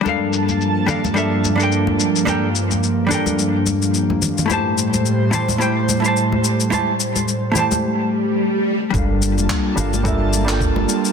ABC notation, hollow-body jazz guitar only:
X:1
M:4/4
L:1/16
Q:"Swing 16ths" 1/4=108
K:Gdor
V:1 name="Hollow-body jazz guitar"
[G,DABf]6 [G,DABf] z [G,DABe]3 [G,DABg]4- [G,DABg] | [G,DABg] z4 z [G,DABg]8- [G,DABg]2 | [A,EGca]6 [A,EGca] z [A,EGcg]3 [A,EGca]4- [A,EGca] | [A,EGca] z4 z [A,EGca]8- [A,EGca]2 |
[G,DABf]6 [G,DABf] z [G,DABe]3 [G,DABg]4- [G,DABg] |]